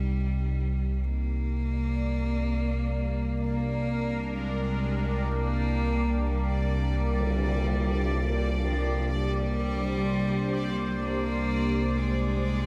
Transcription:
Already playing: synth drone C2, analog synth pad C3 D#4 G4, cello G3
1.04 cello A#3
1.50 synth texture D5
1.87 analog synth pad A#3
3.02 analog synth pad A#4
3.33 analog synth pad D4
3.41 cello A#3
4.23 analog synth pad G4
4.36 cello G#3
5.32 cello A#3
6.26 cello G3
7.20 tam-tam
8.66 cello F3
9.11 cello G3
9.30 analog synth pad C5
11.00 cello A#3
11.98 cello G#3

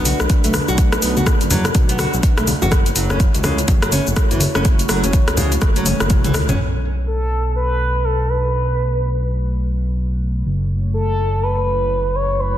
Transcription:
Already playing: analog synth bass B1, analog synth pad A3 D4 F#4 B4
0.05 nylon-string guitar F#4, open hi-hat, high conga, shaker
0.20 analog synth bass B1, cross-stick, shaker
0.30 kick, closed hi-hat, shaker
0.44 analog synth bass B1, nylon-string guitar A3, closed hi-hat, shaker
0.54 cross-stick, open hi-hat, high conga, shaker
0.68 analog synth bass B1, nylon-string guitar F#4, shaker
0.78 kick, closed hi-hat, shaker
0.92 cross-stick, closed hi-hat, shaker
1.02 analog synth bass B1, nylon-string guitar B3, open hi-hat, shaker
1.17 nylon-string guitar F#4, high conga, shaker
1.27 kick, cross-stick, closed hi-hat, shaker
1.41 analog synth bass F#1, closed hi-hat, shaker
1.50 nylon-string guitar F#3, open hi-hat, high conga, low conga, shaker
1.65 cross-stick, closed hi-hat, shaker
1.75 analog synth bass B1, kick, closed hi-hat, high conga, shaker
1.89 nylon-string guitar B3, closed hi-hat, shaker
1.99 nylon-string guitar F#4, cross-stick, open hi-hat, high conga, shaker
2.13 analog synth bass B1, shaker
2.23 kick, closed hi-hat, shaker
2.38 analog synth bass B1, nylon-string guitar A3, cross-stick, closed hi-hat, shaker
2.47 open hi-hat, high conga, shaker
2.62 analog synth bass F#1, nylon-string guitar F#4, low conga, shaker
2.72 analog synth pad A3 E4 F#4 C#5, kick, cross-stick, closed hi-hat, shaker
2.86 closed hi-hat, shaker
2.96 analog synth bass F#1, nylon-string guitar F#3, open hi-hat, shaker
3.10 nylon-string guitar C#4, cross-stick, high conga, shaker
3.20 kick, closed hi-hat, high conga, shaker
3.35 analog synth bass C#2, closed hi-hat, shaker
3.44 nylon-string guitar C#3, cross-stick, open hi-hat, high conga, low conga, shaker
3.58 closed hi-hat, shaker
3.68 analog synth bass F#1, kick, closed hi-hat, low conga, shaker
3.82 nylon-string guitar F#3, cross-stick, closed hi-hat, shaker
3.92 nylon-string guitar C#4, open hi-hat, high conga, shaker
4.07 analog synth bass F#1, shaker
4.16 kick, cross-stick, closed hi-hat, shaker
4.31 analog synth bass F#1, nylon-string guitar E3, closed hi-hat, shaker
4.40 open hi-hat, high conga, shaker
4.55 analog synth bass F#1, nylon-string guitar C#4, cross-stick, shaker
4.65 kick, closed hi-hat, shaker
4.79 closed hi-hat, shaker
4.89 analog synth bass F#1, nylon-string guitar F#3, cross-stick, open hi-hat, shaker
5.04 nylon-string guitar C#4, closed hi-hat, high conga, shaker
5.13 kick, closed hi-hat, high conga, shaker
5.28 analog synth bass C#2, cross-stick, closed hi-hat, shaker
5.37 nylon-string guitar C#3, open hi-hat, high conga, low conga, shaker
5.52 closed hi-hat, shaker
5.62 analog synth bass F#1, kick, cross-stick, closed hi-hat, high conga, shaker
5.76 nylon-string guitar F#3, closed hi-hat, shaker
5.86 nylon-string guitar C#4, open hi-hat, high tom, high conga, shaker
6.00 analog synth bass F#1, cross-stick, closed hi-hat, shaker
6.10 kick, closed hi-hat, mid tom, shaker
6.24 analog synth bass C#2, nylon-string guitar E3, closed hi-hat, mid tom, shaker
6.34 cross-stick, open hi-hat, high conga, shaker
6.49 analog synth bass F#1, nylon-string guitar C#4, closed hi-hat, mid tom, low conga, shaker
6.59 analog synth bass B1, analog synth pad A3 D4 F#4 B4
7.07 analog synth lead A4
7.56 analog synth lead B4
8.04 analog synth lead A4
8.29 analog synth lead B4
10.46 analog synth bass F#1, analog synth pad E4 F#4 C#5
10.94 analog synth lead A4
11.43 analog synth lead B4
12.15 analog synth lead C#5
12.40 analog synth lead B4

